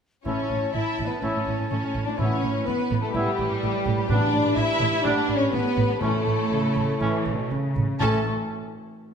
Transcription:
0.25 A1 A2 E3 A3 C#4 E4 C#5 A5
0.50 A1 A2
0.62 A2
0.73 A1 A2 E4 E5
0.99 A1 A2
1.05 B3 B4
1.20 A1 A2 E3 A3 C#4 E4 C#5
1.24 C#5
1.35 A2
1.47 A1 A2
1.59 A2
1.70 A1 A2 C#4 C#5
1.83 A2
1.95 A1 A2
2.05 A2 D4 D5
2.18 A1 A2 E3 B3 C#4 E4 B4 C#5
2.44 A1 A2
2.55 A2
2.65 A1 A2 B3 B4
2.91 A1 A2
3.02 A3 A4
3.11 A1 A2 G3 B3 E4 G4
3.16 E3
3.26 A2
3.38 A1 A2
3.49 A2
3.62 A1 A2
3.73 A2
3.86 A1 A2
3.97 A2
4.07 A1 A2 G3 B3 D4 G4 D5
4.33 A1 A2
4.44 A2
4.56 A1 A2 E4 E5
4.80 A1 A2
5.02 A1 A2 G3 B3 D4 D5
5.17 A2
5.28 A1 A2
5.35 C#4 C#5
5.40 A2
5.51 A1 A2 B3 B4
5.63 A2
5.76 A1 A2
5.89 A2
6.00 A1 A2 E3 A3 C#4 E4 A4 C#5
6.25 A1 A2
6.38 A2
6.50 A1 C#3
6.76 A1
7.00 A1 E3 A3 C#4
7.26 A1
7.34 B2
7.50 A1 C#3
7.76 A1
7.99 A1 A2 E3 A3 C#4 A4 A5

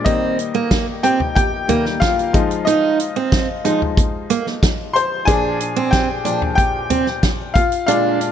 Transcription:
0.05 D#3 G3 A#3 C4 D#4 D#5, kick, closed hi-hat
0.39 closed hi-hat
0.55 A#3
0.71 kick, snare, closed hi-hat
1.03 C4 G4 G5, closed hi-hat
1.20 floor tom
1.35 G4 G5, kick, closed hi-hat
1.68 D#3 G3 A#3, closed hi-hat, floor tom
1.86 snare
2.00 F4 F5, kick, snare, closed hi-hat
2.19 closed hi-hat
2.33 F3 G#3 D#4, kick, closed hi-hat
2.51 closed hi-hat
2.65 D#4 D#5, closed hi-hat
3.00 closed hi-hat
3.16 C4
3.32 kick, snare, closed hi-hat
3.64 F3 G#3 D#4, closed hi-hat
3.82 floor tom
3.97 kick, closed hi-hat
4.30 A#3, closed hi-hat
4.47 snare
4.63 kick, snare, closed hi-hat
4.93 C5 C6, closed hi-hat
5.25 A#2 F3 D4 G#4 G#5, kick, closed hi-hat
5.60 closed hi-hat
5.76 C4
5.91 G4 G5, kick, snare, closed hi-hat
6.24 A#2 F3 D4, closed hi-hat
6.42 floor tom
6.55 G4 G5, kick, closed hi-hat
6.90 C4, closed hi-hat, floor tom
7.06 snare
7.23 kick, snare, closed hi-hat
7.54 F4 F5, kick, closed hi-hat
7.72 closed hi-hat
7.87 A#2 G#3 D4 F4 F5, closed hi-hat
8.21 closed hi-hat

